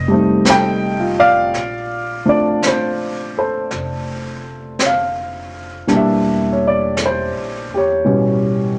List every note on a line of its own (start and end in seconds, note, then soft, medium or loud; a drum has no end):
0.00 1.51 F1 medium
0.00 0.44 D#5 loud
0.08 1.54 G3 medium
0.08 1.55 A3 soft
0.08 1.56 C4 soft
0.14 1.57 D#4 medium
0.45 1.33 A4 soft
0.45 brush sweep soft
0.45 snare medium
0.45 hi-hat pedal medium
0.50 1.21 G5 medium
1.00 1.78 F4 medium
1.20 2.28 D5 medium
1.20 2.23 F5 loud
1.54 3.68 A#1 medium
1.54 brush sweep soft
1.54 snare soft
2.25 5.89 F3 soft
2.25 5.89 A3 soft
2.25 5.89 C4 soft
2.25 5.87 D4 soft
2.25 2.66 D5 medium
2.62 brush sweep soft
2.62 snare soft
2.62 hi-hat pedal soft
2.67 3.37 C5 medium
3.37 5.49 A4 soft
3.37 4.79 C5 medium
3.71 5.85 F1 medium
3.71 brush sweep soft
3.71 snare soft
4.79 brush sweep soft
4.79 snare soft
4.79 hi-hat pedal soft
4.86 5.95 F5 medium
5.87 7.30 E1 medium
5.87 8.03 E3 soft
5.87 8.04 G3 soft
5.87 8.06 A#3 soft
5.87 8.06 D4 medium
5.87 brush sweep soft
5.87 snare soft
5.94 7.73 G4 soft
5.94 6.56 E5 medium
6.52 6.61 C#5 medium
6.67 6.99 D5 medium
6.97 brush sweep soft
6.97 snare soft
6.97 hi-hat pedal soft
7.06 7.75 C5 medium
7.33 7.67 A#1 soft
7.69 8.03 E2 medium
7.74 8.79 G4 medium
7.74 8.79 C#5 medium
8.04 8.79 A1 medium
8.04 8.79 B2 soft
8.04 8.79 E3 soft
8.04 8.79 G3 soft
8.04 8.79 C#4 soft
8.04 brush sweep soft